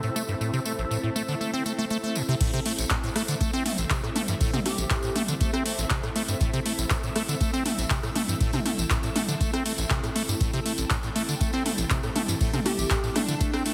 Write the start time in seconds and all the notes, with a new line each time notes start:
Already playing: C4 E4 A4 E5
0.03 A2, tambourine
0.16 A3, tambourine
0.28 G2, tambourine
0.41 A2, tambourine
0.53 C3, tambourine
0.66 A3, tambourine
0.79 A1, tambourine
0.91 A2, tambourine
1.03 A2
1.16 A3, tambourine
1.28 D3, tambourine
1.41 A3, tambourine
1.53 C4, tambourine
1.66 A3, tambourine
1.78 A3, tambourine
1.90 A3, tambourine
2.03 A3, tambourine
2.15 A2, tambourine
2.29 C3, tambourine
2.40 A2 C4 E4 A4 E5, kick, closed hi-hat, tambourine, crash
2.53 C3, closed hi-hat, tambourine
2.66 A3, closed hi-hat, open hi-hat
2.78 A1, closed hi-hat, tambourine
2.90 A2, kick, snare, clap, closed hi-hat, tambourine
3.03 A2, tambourine
3.16 A3, cross-stick, closed hi-hat, open hi-hat
3.28 D3, closed hi-hat, tambourine
3.41 A3, kick, closed hi-hat, tambourine
3.53 C4, snare, tambourine
3.66 A3, closed hi-hat, mid tom, open hi-hat
3.78 A1, closed hi-hat, tambourine
3.90 C3, kick, snare, clap, closed hi-hat, tambourine
4.03 A2, cross-stick, tambourine
4.16 A3, closed hi-hat, mid tom, open hi-hat
4.28 G2, snare, closed hi-hat, tambourine
4.41 A2, kick, closed hi-hat, open hi-hat, tambourine
4.53 C3, closed hi-hat, mid tom, tambourine
4.66 A3 G4, closed hi-hat, mid tom, open hi-hat
4.78 A1, closed hi-hat, tambourine
4.90 A2, kick, snare, clap, closed hi-hat, tambourine
5.03 A2, tambourine
5.16 A3, closed hi-hat, mid tom, open hi-hat
5.28 D3, closed hi-hat, tambourine
5.41 A3, kick, closed hi-hat, tambourine
5.53 C4, cross-stick, tambourine
5.66 A3, closed hi-hat, open hi-hat
5.78 A1, snare, closed hi-hat, tambourine
5.90 C3, kick, snare, clap, closed hi-hat, tambourine
6.03 A2, cross-stick, tambourine
6.16 A3, closed hi-hat, open hi-hat
6.28 G2, closed hi-hat, tambourine
6.41 A2, kick, closed hi-hat, tambourine
6.53 C3, closed hi-hat, tambourine
6.66 A3, closed hi-hat, open hi-hat
6.78 A1, closed hi-hat, tambourine
6.90 A2, kick, snare, clap, closed hi-hat, tambourine
7.03 A2, tambourine
7.16 A3, cross-stick, closed hi-hat, open hi-hat
7.28 D3, closed hi-hat, tambourine
7.41 A3, kick, closed hi-hat, tambourine
7.53 C4, snare, tambourine
7.66 A3, closed hi-hat, mid tom, open hi-hat
7.78 A1, closed hi-hat, tambourine
7.90 C3, kick, snare, clap, closed hi-hat, tambourine
8.03 A2, cross-stick, tambourine
8.16 A3, closed hi-hat, mid tom, open hi-hat
8.28 G2, snare, closed hi-hat, tambourine
8.40 A2, kick, closed hi-hat, open hi-hat, tambourine
8.53 C3, closed hi-hat, mid tom, tambourine
8.66 A3, closed hi-hat, mid tom, open hi-hat
8.78 A1, closed hi-hat, tambourine
8.90 A2, kick, snare, clap, closed hi-hat, tambourine
9.03 A2, closed hi-hat, tambourine
9.16 A3, closed hi-hat, mid tom, open hi-hat
9.28 D3, closed hi-hat, tambourine
9.41 A3, kick, closed hi-hat, tambourine
9.53 C4, cross-stick, closed hi-hat, tambourine
9.66 A3, closed hi-hat, open hi-hat
9.78 A1, snare, closed hi-hat, tambourine
9.90 C3, kick, snare, clap, closed hi-hat, tambourine
10.03 A2, cross-stick, closed hi-hat, tambourine
10.16 A3, closed hi-hat, open hi-hat
10.28 G2, closed hi-hat, tambourine
10.41 A2 G5, kick, closed hi-hat, tambourine
10.53 C3, closed hi-hat, tambourine
10.66 A3, closed hi-hat, open hi-hat
10.78 A1, closed hi-hat, tambourine
10.90 A2, kick, snare, clap, closed hi-hat, tambourine
11.03 A2, tambourine
11.16 A3, closed hi-hat, open hi-hat
11.29 D3, closed hi-hat, tambourine
11.41 A3, kick, closed hi-hat, tambourine
11.53 C4, snare, tambourine
11.66 A3, closed hi-hat, mid tom, open hi-hat
11.78 A1, closed hi-hat, tambourine
11.90 C3, kick, snare, clap, closed hi-hat, tambourine
12.03 A2, cross-stick, tambourine
12.16 A3, closed hi-hat, mid tom, open hi-hat
12.28 G2, snare, closed hi-hat, tambourine
12.41 A2, kick, closed hi-hat, open hi-hat, tambourine
12.53 C3, closed hi-hat, mid tom, tambourine
12.66 A3 G4, closed hi-hat, mid tom, open hi-hat
12.78 A1, closed hi-hat, tambourine
12.90 A2, kick, snare, clap, closed hi-hat, tambourine
13.03 A2, tambourine
13.16 A3 D4, cross-stick, closed hi-hat, mid tom, open hi-hat
13.28 D3, closed hi-hat, tambourine
13.41 A3, kick, closed hi-hat, tambourine
13.53 C4, cross-stick, tambourine
13.66 A3, closed hi-hat, open hi-hat